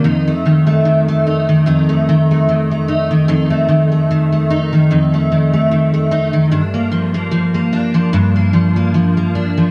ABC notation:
X:1
M:4/4
L:1/16
Q:"Swing 16ths" 1/4=74
K:Fmix
V:1 name="Steel-string acoustic guitar"
[F,,E] A, E, A, E, A, E E, [F,,E] A, E, A, E, A, E E, | [F,,E] A, E, A, E, A, E E, [F,,E] A, E, A, E, A, E E, | [G,,D] B, F, B, F, B, D F, [G,,D] B, F, B, F, B, D F, |]